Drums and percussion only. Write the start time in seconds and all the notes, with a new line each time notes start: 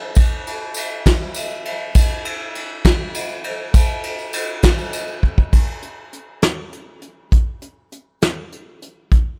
0.15 kick, ride, tambourine
0.47 ride
0.74 ride, tambourine
1.06 kick, snare, ride
1.34 ride, tambourine
1.50 tambourine
1.65 ride
1.95 kick, ride, tambourine
2.25 ride
2.55 ride
2.85 kick, snare, ride
3.15 ride, tambourine
3.29 tambourine
3.44 ride
3.74 kick, ride, tambourine
4.03 ride
4.19 tambourine
4.33 ride, tambourine
4.62 kick, snare, ride, tambourine
4.78 tambourine
4.93 ride, tambourine
5.08 tambourine
5.23 kick
5.38 kick
5.53 kick, crash
5.82 closed hi-hat
6.13 closed hi-hat
6.42 snare, closed hi-hat
6.73 closed hi-hat
7.02 closed hi-hat
7.32 kick, closed hi-hat
7.62 closed hi-hat
7.92 closed hi-hat
8.22 snare, closed hi-hat
8.52 closed hi-hat
8.82 closed hi-hat
9.11 kick, closed hi-hat